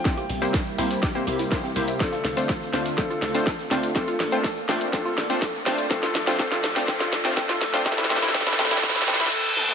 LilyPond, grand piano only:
\new Staff \with { instrumentName = "Grand piano" } { \time 4/4 \key c \mixolydian \tempo 4 = 123 g''4 r2. | a'4. r8 a'4. r8 | a'4. r8 a'4. r8 | a'4 a'4 a'4 a'4 |
a'8 a'8 a'8 a'8 a'8 a'8 a'8 a'8 | }